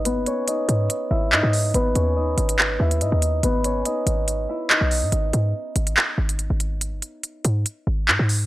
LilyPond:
<<
  \new Staff \with { instrumentName = "Harp" } { \time 4/4 \key cis \dorian \tempo 4 = 142 <b b'>8 <cis' cis''>8 <dis' dis''>4. <e' e''>8 <dis' dis''>4 | <b b'>8 <cis' cis''>8 <dis' dis''>4. <e' e''>8 <dis' dis''>4 | <b b'>8 <cis' cis''>8 <dis' dis''>4. <e' e''>8 <dis' dis''>4 | r1 |
r1 | }
  \new Staff \with { instrumentName = "808-style bass" } { \clef bass \time 4/4 \key cis \dorian gis,,16 g,,16 r4 gis,8 r8 gis,,8 gis,16 gis,8. | gis,,8 dis,4 gis,,4 dis,8 gis,16 dis,8. | gis,,4 r8 gis,,4 r8. b,,8 gis,16 | gis,,8 gis,8 r8 gis,,8 r8 gis,,8. gis,,8.~ |
gis,,16 g,,16 r4 gis,8 r8 gis,,8 gis,16 gis,8. | }
  \new DrumStaff \with { instrumentName = "Drums" } \drummode { \time 4/4 hh8 hh8 hh8 hh8 hh4 hc8 hho8 | hh8 hh8 r8 hh16 hh16 hc8. hh16 hh8 hh8 | hh8 hh8 hh8 hh8 hh4 hc8 hho8 | hh8 hh8 r8 hh16 hh16 hc8. hh16 hh8 hh8 |
hh8 hh8 hh8 hh8 hh4 hc8 hho8 | }
>>